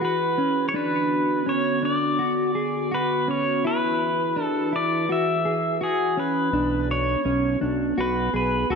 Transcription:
0.00 0.71 E3 medium
0.00 0.72 E4 medium
0.00 8.75 F#4 medium
0.00 0.38 F#4 medium
0.00 0.71 G#4 medium
0.00 0.71 B4 medium
0.05 0.68 B4 medium
0.38 0.74 C#4 medium
0.69 0.75 C#5 medium
0.74 3.60 D3 medium
0.74 3.60 B3 medium
0.74 1.46 D4 medium
0.74 1.49 B4 medium
1.46 1.82 C#4 medium
1.46 1.82 C#5 medium
1.83 2.19 D4 medium
1.83 2.94 D5 medium
2.19 2.55 F#4 medium
2.55 2.91 G#4 medium
2.91 3.27 F#4 medium
2.91 3.30 B4 medium
3.28 3.64 C#4 medium
3.28 3.66 C#5 medium
3.64 6.50 E3 medium
3.64 6.50 E4 medium
3.64 4.36 E4 medium
3.64 6.50 G#4 medium
3.64 6.50 B4 medium
3.64 4.43 B4 medium
4.36 4.72 D4 medium
4.43 4.75 A4 medium
4.73 5.08 E4 medium
4.73 5.11 D5 medium
5.09 5.45 F#4 medium
5.09 5.83 E5 medium
5.45 5.80 G#4 medium
5.81 6.17 F#4 medium
5.81 6.19 G#4 medium
6.17 6.53 C#4 medium
6.17 6.91 B4 medium
6.53 7.16 B1 loud
6.53 8.75 B3 medium
6.53 7.25 D4 medium
6.91 7.58 C#5 medium
7.25 7.57 B1 medium
7.25 7.61 C#4 medium
7.61 7.94 B1 medium
7.61 7.97 D4 medium
7.98 8.29 B1 loud
7.98 8.33 F#4 medium
7.98 8.35 B4 medium
8.34 8.65 B1 medium
8.34 8.70 G#4 medium
8.34 8.72 B4 medium
8.70 8.75 C#2 medium
8.70 8.75 F#4 medium
8.70 8.75 A4 medium

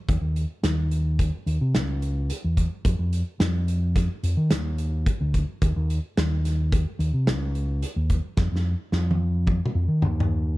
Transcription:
0.08 0.20 D#2 medium
0.08 kick loud
0.08 closed hi-hat medium
0.21 0.44 D#2 medium
0.36 closed hi-hat medium
0.63 1.30 D#2 loud
0.63 snare medium
0.63 closed hi-hat medium
0.91 closed hi-hat medium
1.19 kick medium
1.19 closed hi-hat medium
1.46 1.58 D#2 medium
1.46 closed hi-hat medium
1.61 1.76 C3 medium
1.75 2.30 C#2 medium
1.75 snare loud
1.75 closed hi-hat medium
2.02 closed hi-hat medium
2.30 closed hi-hat medium
2.44 2.66 E2 medium
2.57 kick medium
2.57 closed hi-hat medium
2.85 2.96 F2 medium
2.85 kick loud
2.85 closed hi-hat medium
2.99 3.21 F2 medium
3.13 closed hi-hat medium
3.40 4.07 F2 loud
3.40 snare medium
3.40 closed hi-hat medium
3.68 closed hi-hat medium
3.96 kick medium
3.96 snare soft
3.96 closed hi-hat medium
4.23 4.34 F2 medium
4.23 closed hi-hat medium
4.37 4.52 D#3 medium
4.51 5.07 D#2 medium
4.51 snare loud
4.51 closed hi-hat medium
4.78 closed hi-hat medium
5.06 kick medium
5.06 closed hi-hat medium
5.21 5.43 D2 medium
5.34 kick medium
5.34 closed hi-hat medium
5.62 5.73 D#2 medium
5.62 kick loud
5.62 closed hi-hat medium
5.76 5.98 D#2 medium
5.90 closed hi-hat medium
6.17 6.84 D#2 loud
6.17 snare loud
6.17 closed hi-hat medium
6.45 snare soft
6.45 closed hi-hat medium
6.72 kick loud
6.72 closed hi-hat medium
6.99 7.10 D#2 medium
6.99 closed hi-hat medium
7.13 7.29 C3 medium
7.27 7.83 C#2 medium
7.27 snare loud
7.27 closed hi-hat medium
7.55 closed hi-hat soft
7.82 closed hi-hat medium
7.96 8.18 D#2 medium
8.10 kick medium
8.10 closed hi-hat medium
8.37 8.49 F2 medium
8.37 kick loud
8.37 snare medium
8.52 8.74 F2 medium
8.56 snare soft
8.92 9.59 F2 loud
8.92 snare soft
9.11 high tom medium
9.47 kick medium
9.47 high tom medium
9.66 mid tom medium
9.75 9.86 F2 medium
9.88 10.04 D#3 medium
10.02 10.58 D#2 loud
10.02 mid tom medium
10.20 mid tom medium

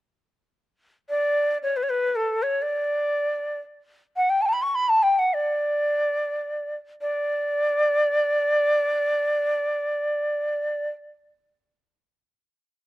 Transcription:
1.09 1.58 D5 medium
1.63 1.78 C#5 medium
1.77 1.85 B4 medium
1.83 1.91 C#5 medium
1.90 2.17 B4 medium
2.16 2.44 A4 medium
2.43 2.64 C#5 medium
2.62 3.59 D5 medium
4.17 4.31 F#5 medium
4.30 4.43 G5 medium
4.42 4.47 A5 medium
4.46 4.49 G5 medium
4.46 4.55 A5 medium
4.53 4.64 B5 medium
4.62 4.77 C#6 medium
4.75 4.91 B5 medium
4.89 5.04 A5 medium
5.03 5.20 G5 medium
5.19 5.35 F#5 medium
5.34 6.76 D5 medium
7.01 10.89 D5 medium

